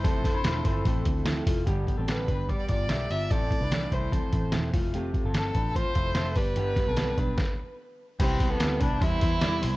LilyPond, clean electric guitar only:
\new Staff \with { instrumentName = "Clean electric guitar" } { \time 4/4 \key c \major \tempo 4 = 147 <c' a'>8. <d' b''>8. <e' c''>8 <c' a'>4. <a f'>8 | <b g'>8. <c' a'>8. <d' b'>8 <g' d''>8 <f' d''>8 <g' e''>8 <f' d''>8 | <c' a'>8. <d' b'>8. <e' c''>8 <c' a'>4. <a f'>8 | <c' g'>8. <c' a'>8. <d' b'>8 <f' c''>8 <e' c''>8 <a' e''>8 <g' d''>8 |
<b g'>8. <c' a'>8. <d' b'>8 r2 | <g' b'>8. <c a'>8. <d' b'>8 <e' c''>8 <e' c''>8 <g' d''>8 <e' c''>8 | }